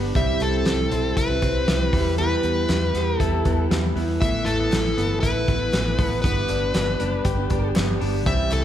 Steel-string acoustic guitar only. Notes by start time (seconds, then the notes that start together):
Already playing: G3 B3 D4 G4
0.15 C3 G3 C4 E4 G4
0.91 G3 C4 E4 G4
1.29 C4 E4 G4
1.41 G3 C4 E4 G4
1.66 G3 C4 E4 G4
1.92 E3 B3 E4 G4
2.18 E3 B3 E4 G4
2.94 E3 B3 E4 G4
3.33 B3 E4 G4
3.45 E3 B3 E4 G4
3.71 E3 B3 E4 G4
3.96 E3 B3 E4 G4
4.22 A3 B3 E4 A4
4.97 A3 B3 E4 A4
5.35 B3 E4 A4
5.48 A3 B3 E4 A4
5.73 A3 B3 E4 A4
5.98 A3 B3 E4 A4
6.23 G3 B3 D4 G4
6.99 G3 B3 D4 G4
7.37 B3 D4 G4
7.50 G3 B3 D4 G4
7.75 G3 B3 D4 G4
8.00 G3 B3 D4 G4
8.26 C3 E3 G3 C4 E4